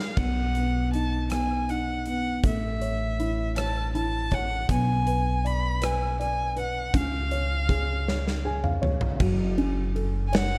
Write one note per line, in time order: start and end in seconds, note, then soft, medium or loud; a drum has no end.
0.00 0.13 C#3 medium
0.00 0.19 G#3 soft
0.00 0.15 F4 soft
0.00 0.13 G#4 soft
0.00 0.15 C#5 soft
0.00 0.19 F5 medium
0.17 2.40 B1 medium
0.17 2.41 B2 medium
0.17 0.92 F#5 medium
0.17 kick loud
0.17 crash medium
0.55 1.29 B3 medium
0.55 closed hi-hat soft
0.93 1.68 D#4 soft
0.93 1.28 A5 medium
0.93 closed hi-hat soft
1.30 2.05 B3 soft
1.30 1.71 G#5 medium
1.30 cross-stick medium
1.30 closed hi-hat medium
1.69 2.42 D#4 soft
1.69 2.07 F#5 medium
1.69 closed hi-hat soft
2.06 2.43 B3 soft
2.06 2.42 F#5 medium
2.06 closed hi-hat soft
2.44 4.65 A1 medium
2.44 4.65 A3 medium
2.44 3.54 E5 medium
2.44 kick loud
2.44 closed hi-hat medium
2.81 3.55 C#5 soft
2.81 closed hi-hat soft
3.20 3.93 E4 medium
3.20 closed hi-hat soft
3.56 4.31 C#5 soft
3.56 3.92 A5 medium
3.56 cross-stick loud
3.56 closed hi-hat medium
3.95 4.67 E4 medium
3.95 4.35 A5 medium
3.95 closed hi-hat soft
4.31 4.68 C#5 soft
4.31 4.70 F#5 medium
4.31 kick medium
4.31 closed hi-hat soft
4.69 6.90 B1 medium
4.69 6.90 B3 medium
4.69 5.47 G#5 medium
4.69 kick loud
4.69 closed hi-hat medium
5.07 5.80 B4 medium
5.07 closed hi-hat medium
5.45 6.18 D5 medium
5.45 5.85 B5 loud
5.45 closed hi-hat soft
5.81 6.55 B4 medium
5.81 6.19 G#5 medium
5.81 cross-stick loud
5.81 closed hi-hat medium
6.19 6.92 D5 medium
6.19 6.54 G#5 medium
6.19 closed hi-hat soft
6.56 6.93 B4 soft
6.56 6.98 F#5 medium
6.56 closed hi-hat soft
6.94 9.16 C#2 medium
6.94 9.16 C#4 medium
6.94 8.46 F5 medium
6.94 kick loud
6.94 closed hi-hat medium
7.31 8.07 C#5 medium
7.31 closed hi-hat soft
7.69 8.43 G#4 medium
7.69 kick medium
7.69 closed hi-hat soft
8.08 8.80 C#5 medium
8.08 snare soft
8.27 snare medium
8.45 9.18 G#4 medium
8.45 8.63 G#5 medium
8.64 8.81 F5 medium
8.64 mid tom medium
8.82 9.17 C#5 medium
8.82 mid tom medium
9.01 floor tom medium
9.20 10.58 F#1 loud
9.20 10.58 F#3 medium
9.20 kick loud
9.20 crash loud
9.58 10.58 C#4 medium
9.58 ride soft
9.95 10.58 A4 medium
9.95 ride soft
10.27 10.36 G#5 medium
10.33 10.58 C#5 medium
10.33 10.58 F#5 loud
10.33 snare loud
10.33 ride medium